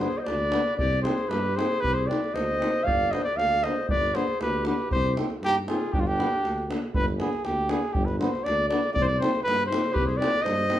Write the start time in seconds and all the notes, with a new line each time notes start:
Already playing: C5
0.00 G#4, davul high
0.12 davul high
0.18 C5 D#5
0.24 D2 B4 D5, davul high
0.51 B3 D4, davul high
0.65 davul high
0.77 C2 G4 D5, davul low
0.93 davul high
1.02 C4 D#4 G#4 C5, davul high
1.18 davul high
1.29 G2 G4 B4, davul high
1.56 C4 D#4 G#4 C5, davul high
1.72 davul high
1.80 C2 G4 B4, davul low
1.94 G#4 C5
2.07 C4 D#4 B4 D5
2.11 davul high
2.24 davul high
2.33 D2 C5 D#5, davul high
2.50 davul high
2.59 C4 D#4, davul high
2.76 davul high
2.84 G1 D5 F5, davul low
3.00 davul high
3.11 B3 D4 C5 D#5, davul high
3.24 B4 D5, davul high
3.36 D2 D5 F5, davul high
3.63 B3 D4 C5 D#5, davul high
3.76 davul high
3.89 G1 B4 D5, davul low
4.02 davul high
4.14 B3 D4 G#4 C5, davul high
4.28 davul high
4.40 D2 G4 B4, davul high
4.65 B3 D4 G4 B4, davul high
4.79 davul high
4.91 C2 G4 C5, davul low
5.05 davul high
5.17 C4 D#4, davul high
5.30 davul high
5.41 G2 D#4 G4, davul high
5.67 C4 D#4 F4 G#4, davul high
5.80 davul high
5.92 G1 D4 G4, davul low
6.00 D4 F4
6.07 D4 G4, davul high
6.18 B3 D4, davul high
6.44 D2, davul high
6.58 davul high
6.68 B3 D4, davul high
6.82 davul high
6.94 G1 B4, davul low
7.08 davul high
7.19 B3 D4 G#4, davul high
7.33 davul high
7.45 D2 G4, davul high
7.69 B3 D4 G#4, davul high
7.83 davul high
7.93 G1 G4, davul low
8.06 B4, davul high
8.19 B3 D4 C5, davul high
8.35 davul high
8.44 D2 D5, davul high
8.69 B3 D4 D5, davul high
8.83 davul high
8.93 C2 D5, davul low
9.02 C5 D5
9.10 davul high
9.18 C4 D#4 C5
9.22 davul high
9.35 davul high
9.43 G2 B4
9.48 davul high
9.66 C4 C5
9.71 D#4, davul high
9.84 davul high
9.91 C2 G4 G#4 B4 C5
9.96 davul low
10.05 G#4 C5
10.09 davul high
10.17 C4 D#4 B4 D5
10.22 davul high
10.42 G2 C5 D#5, davul high
10.59 davul high
10.69 C4 D#4, davul high